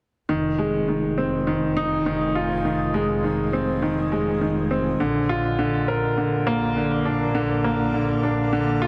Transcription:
0.29 double bass section F1, upright piano D#3, ambient pad F4
0.35 ambient pad C5 D#5
0.51 ambient pad G#5
0.58 upright piano G#3
0.88 upright piano D#3
1.18 upright piano C4
1.47 upright piano D#3
1.77 upright piano D#4
2.06 upright piano D#3
2.35 upright piano F4
2.65 upright piano D#3
2.94 upright piano G#3
3.24 upright piano D#3
3.53 upright piano C4
3.82 upright piano D#3
4.12 upright piano G#3
4.41 upright piano D#3
4.71 upright piano C4
5.00 double bass section A#1, upright piano D3, ambient pad A#3
5.07 ambient pad A#4
5.19 ambient pad D5
5.29 upright piano F4
5.44 ambient pad F5
5.59 upright piano D3
5.88 upright piano A#4
6.18 upright piano D3
6.47 upright piano A#3
6.76 upright piano D3
7.05 upright piano D4
7.35 upright piano D3
7.64 upright piano A#3
7.94 upright piano D3
8.23 upright piano D4
8.53 upright piano D3
8.82 upright piano F4

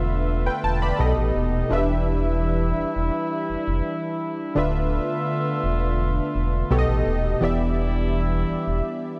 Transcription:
Already playing: sub bass E1, synth keys D3 D4 F4 B4 E5, brass ensemble D3 A3 B3 F4 E5
0.46 synth keys B4 G5
0.64 sub bass E1, synth keys A5
0.82 synth keys D5 B5
0.99 sub bass B1, synth keys B2 B3 G4 A4 D#5, brass ensemble D#4
1.17 sub bass A1
1.35 sub bass D#1
1.70 sub bass E1, synth keys E3 D4 F4 B4 E5, brass ensemble G3 D4 E4
1.78 synth keys G4
2.78 sub bass E1
2.96 sub bass E1
3.50 sub bass F1
3.68 sub bass F1
4.55 sub bass D1, synth keys D3 D4 F4 B4 E5, brass ensemble D3 A3 B3 F4 E5
5.64 sub bass E1
6.35 sub bass E1
6.70 sub bass B1, synth keys B2 B3 G4 A4 C#5, brass ensemble A3 D#4
6.79 synth keys D#5
6.88 sub bass A1
7.06 sub bass D#1
7.41 sub bass E1, synth keys E3 B3 G4 D5 E5, brass ensemble G3 D4 E4
8.49 sub bass E1
8.67 sub bass E1

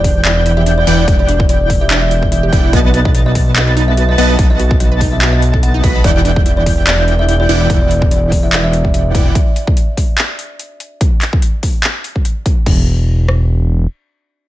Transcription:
Already playing: analog synth bass E1, supersaw synth E3 E4 D5 F#5 G5, kalimba D5, digital synth lead G6
0.04 synth arpeggio sound D4, kick, open hi-hat
0.25 synth arpeggio sound E4, kalimba D5, clap, closed hi-hat
0.46 synth arpeggio sound E4, closed hi-hat
0.57 synth arpeggio sound G4, kalimba E5
0.66 synth arpeggio sound D4, closed hi-hat
0.78 kalimba D5
0.87 analog synth bass E1, supersaw synth E3 E4 D5 F#5 G5, synth arpeggio sound E4, digital synth lead G6, closed hi-hat
0.99 kalimba D5
1.08 analog synth bass E1, supersaw synth E3 D5 F#5 G5, synth arpeggio sound E4, digital synth lead G6, kick, closed hi-hat
1.19 synth arpeggio sound G4, kalimba D5
1.28 synth arpeggio sound D4, closed hi-hat
1.40 kick
1.49 synth arpeggio sound E4, kalimba D5, closed hi-hat
1.70 synth arpeggio sound E4, kick, open hi-hat
1.81 synth arpeggio sound G4, kalimba E5
1.91 synth arpeggio sound D4, clap, closed hi-hat
2.02 kalimba E5
2.11 synth arpeggio sound E4, closed hi-hat
2.23 kick
2.32 synth arpeggio sound E4, kalimba E5, closed hi-hat
2.43 synth arpeggio sound G4
2.52 analog synth bass E1, supersaw synth E3 E4 D5 F#5 G5, synth arpeggio sound D4, digital synth lead G6, kick, closed hi-hat
2.73 analog synth bass B1, supersaw synth B3 B4 D#5 F#5 A5, synth arpeggio sound F#4, kalimba D#5, digital synth lead A6, kick, closed hi-hat
2.94 synth arpeggio sound F#4, closed hi-hat
3.05 synth arpeggio sound B4, kick
3.15 synth arpeggio sound D#4, closed hi-hat
3.26 kalimba D#5
3.35 synth arpeggio sound F#4, kick, open hi-hat
3.56 synth arpeggio sound F#4, kalimba D#5, clap, closed hi-hat
3.67 synth arpeggio sound B4
3.77 synth arpeggio sound D#4, closed hi-hat
3.88 kalimba E5
3.97 synth arpeggio sound F#4, closed hi-hat
4.09 kalimba D#5
4.18 analog synth bass B1, supersaw synth B3 B4 D#5 F#5 A5, synth arpeggio sound F#4, digital synth lead A6, closed hi-hat
4.30 synth arpeggio sound B4, kalimba D#5
4.39 analog synth bass B1, supersaw synth B3 B4 D#5 F#5 A5, synth arpeggio sound D#4, digital synth lead A6, kick, closed hi-hat
4.50 kalimba D#5
4.59 synth arpeggio sound F#4, closed hi-hat
4.71 kick
4.80 synth arpeggio sound F#4, kalimba D#5, closed hi-hat
4.92 synth arpeggio sound B4
5.01 synth arpeggio sound D#4, kick, open hi-hat
5.12 kalimba E5
5.22 synth arpeggio sound F#4, clap, closed hi-hat
5.33 kalimba D#5
5.42 closed hi-hat
5.54 synth arpeggio sound A4, kick
5.63 kalimba F#5, synth arpeggio sound A5, closed hi-hat
5.74 synth arpeggio sound D#4
5.84 analog synth bass B1, supersaw synth B3 B4 D#5 F#5 B5, synth arpeggio sound F#4, digital synth lead B6, kick, closed hi-hat
5.95 synth arpeggio sound A5
6.04 analog synth bass E1, supersaw synth E3 E4 D5 F#5 G5, synth arpeggio sound E4, kalimba D5, digital synth lead G6, kick, closed hi-hat
6.16 synth arpeggio sound G4
6.25 synth arpeggio sound D4, closed hi-hat
6.36 kick
6.46 synth arpeggio sound E4, closed hi-hat
6.57 kalimba D5
6.66 synth arpeggio sound E4, kick, open hi-hat
6.78 synth arpeggio sound G4
6.87 synth arpeggio sound D4, kalimba D5, clap, closed hi-hat
7.08 synth arpeggio sound E4, closed hi-hat
7.19 kalimba E5
7.28 synth arpeggio sound E4, closed hi-hat
7.40 synth arpeggio sound G4, kalimba D5
7.49 analog synth bass E1, supersaw synth E3 E4 D5 F#5 G5, synth arpeggio sound D4, digital synth lead G6, closed hi-hat
7.60 kalimba D5
7.70 analog synth bass E1, supersaw synth E3 E4 D5 F#5 G5, kick, closed hi-hat
7.81 kalimba D5
7.91 closed hi-hat
8.02 kick
8.11 kalimba D5, closed hi-hat
8.32 kick, open hi-hat
8.43 kalimba E5
8.53 clap, closed hi-hat
8.64 kalimba E5
8.73 closed hi-hat
8.85 kick
8.94 kalimba E5, closed hi-hat
9.15 analog synth bass E1, supersaw synth E3 E4 D5 F#5 G5, kick, closed hi-hat
9.35 kick, closed hi-hat
9.56 closed hi-hat
9.67 kick
9.77 closed hi-hat
9.97 kick, open hi-hat
10.18 clap, closed hi-hat
10.39 closed hi-hat
10.59 closed hi-hat
10.80 closed hi-hat
11.01 kick, closed hi-hat
11.22 clap, closed hi-hat
11.33 kick
11.42 closed hi-hat
11.63 kick, open hi-hat
11.84 clap, closed hi-hat
12.04 closed hi-hat
12.16 kick
12.25 closed hi-hat
12.46 kick, closed hi-hat
12.66 analog synth bass E1, kick, crash
13.28 cross-stick

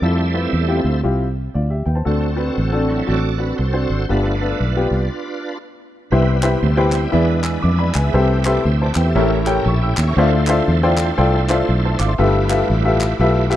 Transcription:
0.02 fingered electric bass F2, tonewheel organ G3 A3 E4 A4 C5 E5, grand piano C4 E4 F4 A4
0.34 grand piano C4 E4 F4 B4
0.53 fingered electric bass E2
0.68 grand piano C4 E4 F4 G4
0.84 fingered electric bass D2
1.03 fingered electric bass C2, grand piano C4 E4 F4 G4
1.54 fingered electric bass D2, grand piano F4 D5
1.70 grand piano G4 E5
1.86 fingered electric bass D#2, grand piano B4 G5
1.95 grand piano C5 A5
2.05 fingered electric bass D2, grand piano D3 C4 D4 F#4 A4, tonewheel organ C4 F#4 A4
2.36 grand piano C4 D4 F#4 B4
2.58 fingered electric bass A1
2.72 grand piano C4 D4 F#4 A4
2.88 tonewheel organ F#3 C4 E4
3.06 fingered electric bass A1, grand piano C4 D4 F#4 A4, tonewheel organ F#4 A4 D5
3.38 grand piano C4 D4 F#4 B4, tonewheel organ B4
3.57 fingered electric bass C2, tonewheel organ F#4 A4 C5
3.73 grand piano C4 D4 F#4 C5
3.90 fingered electric bass G#1
4.09 fingered electric bass G1, grand piano G2 B3 D4 F4 G4, tonewheel organ A3 B3 D4 F4 B4
4.41 grand piano B3 D4 F4 A4
4.60 fingered electric bass B1
4.77 grand piano B3 D4 F4 G4
4.91 fingered electric bass C2
6.11 fingered electric bass C2, grand piano C3 E4 G4 B4 C5 E5, tonewheel organ G3 B3 C4 E4 B4
6.43 grand piano E4 G4 B4 C5 E5, clap
6.63 fingered electric bass D2, tonewheel organ A4 C5
6.77 grand piano E4 G4 B4 C5 G5, tonewheel organ B4 D5
6.92 tonewheel organ C5 E5, clap
7.02 tonewheel organ E5 G5
7.12 fingered electric bass E2, grand piano E3 E4 G#4 B4 D5 E5, tonewheel organ G#3 B3 D4 E4 B4
7.43 grand piano G#5 E6, clap
7.62 fingered electric bass F2, tonewheel organ E5, grand piano D6
7.76 grand piano D5 B5, tonewheel organ E5 G#5
7.94 fingered electric bass C#2, grand piano B4 G#5, clap
8.02 grand piano G#4 E5, tonewheel organ E5
8.12 fingered electric bass C2, grand piano C3 G4 A4 B4 C5 E5, tonewheel organ A3 C4 E4 G4 B4
8.45 grand piano G4 A4 B4 C5 E5, tonewheel organ A4 C5, clap
8.54 tonewheel organ B4 D5
8.65 fingered electric bass D2, tonewheel organ C5 E5
8.82 tonewheel organ B4 D5, grand piano C5 A5
8.95 fingered electric bass E2, grand piano B4 G5, tonewheel organ C5 E5, clap
9.05 grand piano G4 E5, tonewheel organ A4 C5
9.14 fingered electric bass A1, grand piano A2 G4 A4 A#4 C#5 E5, tonewheel organ A3 C#4 E4 G4 A#4
9.46 grand piano G4 A4 A#4 C#5 G5, tonewheel organ G5, clap
9.55 tonewheel organ G5 A#5
9.65 fingered electric bass A#1, tonewheel organ E5 A5, grand piano E5 C#6
9.81 tonewheel organ E5 G5, grand piano G5 E6
9.96 fingered electric bass D#2, tonewheel organ C#5 E5, clap
10.07 tonewheel organ A#4 C#5, grand piano E5 C#6
10.14 fingered electric bass D2, tonewheel organ A3 D4 E4 F4 C5, grand piano F4 A4 C5 D5 E5
10.18 grand piano D3
10.47 grand piano F4 A4 C5 D5 E5, clap
10.68 fingered electric bass E2
10.83 grand piano F4 A4 C5 D5 G5
10.97 clap
11.18 fingered electric bass C2, grand piano F4 A4 C5 D5 G5
11.49 grand piano F4 A4 C5 D5 E5, clap
11.69 fingered electric bass B1
11.85 grand piano C5 A5
11.99 fingered electric bass G#1, grand piano F5 D6, clap
12.09 grand piano E5 C6
12.18 fingered electric bass G1, grand piano G2 F4 G4 A4 B4 E5, tonewheel organ A3 E4 F4 G4 B4
12.49 grand piano F4 G4 A4 B4 E5, clap
12.70 fingered electric bass A1
12.85 grand piano F4 G4 A4 B4 E5
13.01 clap
13.19 fingered electric bass B1, grand piano F4 G4 A4 B4 E5
13.50 grand piano F4 G4 A4 B4 E5, clap

